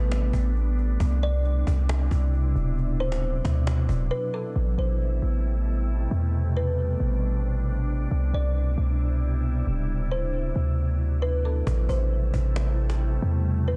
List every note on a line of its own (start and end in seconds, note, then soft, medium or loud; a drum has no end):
0.00 0.32 A1 loud
0.00 0.96 C3 medium
0.00 2.74 G3 medium
0.00 0.97 A3 medium
0.00 0.97 B3 medium
0.00 4.52 D4 medium
0.00 0.52 B4 medium
0.12 cajon slap loud
0.33 0.97 A1 loud
0.33 cajon bass loud
0.56 cajon slap soft
0.78 cajon slap soft
1.00 1.64 C2 loud
1.00 4.52 B2 medium
1.00 4.52 C3 medium
1.00 4.52 E4 medium
1.00 cajon bass loud
1.22 1.44 D5 medium
1.22 cajon slap soft
1.44 cajon slap soft
1.67 2.10 C2 loud
1.67 cajon bass loud
1.89 cajon slap loud
2.11 2.54 C2 loud
2.11 cajon bass medium
2.34 cajon slap soft
2.56 3.41 D1 loud
2.56 cajon slap soft
2.78 4.54 F#3 medium
2.78 cajon slap soft
3.00 4.07 C5 medium
3.00 cajon slap soft
3.12 cajon slap medium
3.22 cajon slap soft
3.45 3.87 D2 loud
3.45 cajon bass loud
3.45 cajon slap loud
3.67 cajon slap loud
3.89 4.10 D1 loud
3.89 cajon bass medium
4.11 4.32 B4 medium
4.34 4.55 A4 medium
4.56 4.77 A1 loud
4.56 11.63 B2 medium
4.56 11.63 C3 medium
4.56 8.08 G3 medium
4.56 8.08 A3 medium
4.56 6.32 E4 medium
4.78 5.21 A1 loud
4.78 4.99 C5 medium
5.22 6.08 A1 loud
6.11 6.97 E2 loud
6.34 11.63 D4 medium
6.57 7.63 B4 medium
7.00 8.07 A1 medium
8.11 8.33 C2 loud
8.11 9.87 G3 medium
8.11 11.63 E4 medium
8.33 8.76 C2 loud
8.33 8.55 D5 medium
8.78 9.63 C2 loud
9.67 10.52 D1 loud
9.89 11.65 F#3 medium
10.11 11.18 C5 medium
10.56 11.63 D2 loud
11.22 11.43 B4 medium
11.45 11.66 A4 medium
11.67 11.88 A1 loud
11.67 13.77 B2 medium
11.67 13.77 C3 medium
11.67 13.77 G3 medium
11.67 13.77 A3 medium
11.67 13.77 E4 medium
11.67 cajon bass loud
11.89 12.32 A1 loud
11.89 12.10 C5 medium
11.89 cajon bass medium
12.34 13.19 A1 loud
12.34 cajon bass medium
12.56 cajon slap loud
12.90 cajon slap medium
13.22 13.77 E2 loud
13.68 13.77 B4 medium